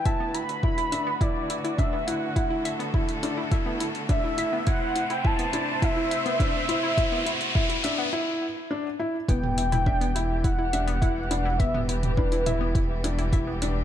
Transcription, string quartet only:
0.00 2.32 B4 medium
0.05 4.63 D3 medium
0.05 8.09 A3 medium
0.05 4.63 F#4 medium
2.35 4.64 A4 medium
4.67 8.10 C3 medium
4.67 6.96 E4 medium
4.67 8.10 C5 medium
6.98 8.12 F#4 medium
9.29 13.84 E3 medium
9.29 13.84 G3 medium
9.29 13.84 B3 medium
9.29 13.84 G4 medium

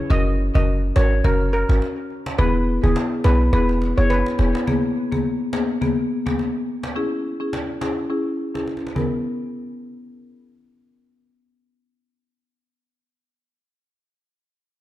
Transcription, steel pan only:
0.11 0.23 D#5 loud
0.55 0.65 D#5 medium
0.96 1.08 C#5 medium
1.25 1.37 A#4 medium
1.53 1.65 A#4 medium
2.38 2.60 B4 loud
2.84 3.05 G#4 medium
3.25 3.46 B4 medium
3.53 3.65 B4 medium
3.98 4.07 C#5 medium
4.10 4.52 B4 medium

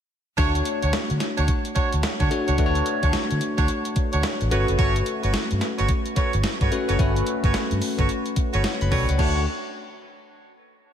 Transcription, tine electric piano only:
0.38 1.23 A3 medium
0.38 1.23 D4 medium
0.38 1.23 F#4 medium
0.38 1.23 C#5 medium
2.30 2.53 A3 medium
2.30 2.53 D4 medium
2.30 2.54 F#4 medium
2.30 2.54 C#5 medium
2.59 3.43 A3 medium
2.59 3.43 D4 medium
2.59 3.43 F#4 medium
2.59 2.67 B4 medium
2.66 3.47 C#5 medium
4.51 5.40 A3 medium
4.51 5.41 C#4 medium
4.51 5.41 F#4 medium
4.51 5.41 B4 medium
6.71 6.94 A3 medium
6.71 6.94 C#4 medium
6.71 6.94 F#4 medium
6.71 6.94 B4 medium
6.99 7.83 A3 medium
6.99 7.84 C#4 medium
6.99 7.84 F#4 medium
6.99 7.84 B4 medium
8.65 8.81 C#5 medium
8.65 8.81 F#5 medium
8.82 8.92 F#5 medium
8.82 8.91 B5 medium
8.92 9.08 D5 medium
8.92 9.08 G5 medium
9.09 9.18 C#5 medium
9.09 9.35 F#5 medium
9.19 9.45 A3 medium
9.19 9.45 D4 medium
9.19 9.45 F#4 medium
9.19 9.45 C#5 medium

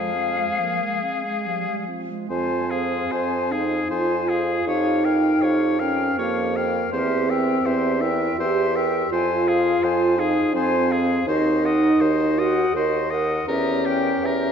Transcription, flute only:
0.00 1.84 F5 soft
2.29 2.72 G#5 soft
2.71 3.13 F5 soft
3.12 3.53 G#5 soft
3.51 3.90 F5 soft
3.90 4.31 G#5 soft
4.30 4.67 F5 soft
4.68 5.06 F5 soft
5.05 5.45 G5 soft
5.44 5.83 F5 soft
5.81 6.19 G5 soft
6.20 6.59 F5 soft
6.58 6.94 G5 soft
6.95 7.32 E5 soft
7.30 7.67 G5 soft
7.66 8.04 E5 soft
8.03 8.39 G5 soft
8.39 8.77 E5 soft
8.76 9.11 G5 soft
9.12 9.50 G#5 soft
9.49 9.86 F5 soft
9.84 10.21 G#5 soft
10.19 10.54 F5 soft
10.55 10.92 G#5 soft
10.91 11.27 F5 soft
11.28 11.66 D#5 soft
11.64 12.03 F#5 soft
12.02 12.42 D#5 soft
12.41 12.76 F#5 soft
12.77 13.15 D#5 soft
13.13 13.49 F#5 soft
13.50 13.88 E5 soft
13.86 14.25 G5 soft
14.24 14.52 E5 soft

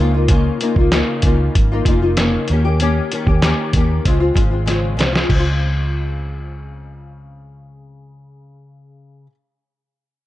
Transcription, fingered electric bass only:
0.00 0.49 C#2 medium
0.76 1.01 C#2 medium
1.23 1.48 C#2 medium
1.55 1.80 G#1 medium
1.86 2.36 F1 medium
2.50 2.99 D#2 medium
3.27 3.52 D#2 medium
3.74 3.98 D#2 loud
4.05 4.30 C#2 medium
4.36 4.99 G#1 medium
4.99 5.23 C2 medium
5.30 9.25 C#2 medium

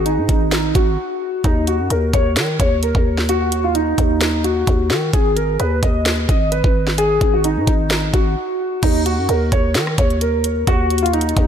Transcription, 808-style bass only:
0.00 0.19 G#1 loud
0.18 0.28 G#2 loud
0.29 0.73 G#1 loud
0.75 0.97 G#1 loud
1.44 1.81 D#2 loud
1.79 1.90 F#2 loud
1.90 2.13 D#2 loud
2.13 2.38 D#2 loud
2.37 2.59 D#3 loud
2.60 2.94 D#2 loud
2.95 3.94 D#2 loud
3.98 4.65 D#2 loud
4.67 4.92 D#2 loud
4.90 5.12 D#3 loud
5.13 5.58 G#1 loud
5.60 5.82 D#2 loud
5.83 6.27 D#2 loud
6.29 6.63 G#1 loud
6.64 7.19 G#1 loud
7.21 7.58 G#1 loud
7.57 7.67 G#2 loud
7.67 8.12 G#1 loud
8.14 8.36 G#1 loud
8.83 9.20 D#2 loud
9.18 9.28 F#2 loud
9.29 9.51 D#2 loud
9.52 9.77 D#2 loud
9.75 9.97 D#3 loud
9.98 10.65 D#2 loud
10.67 11.34 D#2 loud
11.37 11.47 D#2 loud

